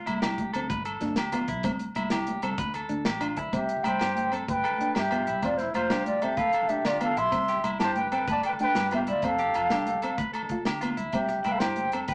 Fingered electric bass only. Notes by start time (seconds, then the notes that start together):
0.08 C2
0.24 C2
0.55 D2
0.70 G1
1.02 G1
1.18 D2
1.49 B1
1.64 C2
1.96 C2
2.11 C2
2.43 C2
2.58 D2
2.90 D2
3.06 A1
3.37 D2
3.53 C2
3.86 C2
4.01 G2
4.49 G1
4.97 G2
5.28 C2
5.43 F1
5.76 F1
5.92 C2
6.38 D2
6.86 D3
7.17 B1
7.32 C2
7.64 C2
7.80 G2
8.27 G1
8.76 G2
9.08 D2
9.23 F1
9.56 F1
9.72 C2
10.18 D2
10.67 D3
10.97 D2
11.13 C2
11.46 C2
11.62 G2
12.08 G1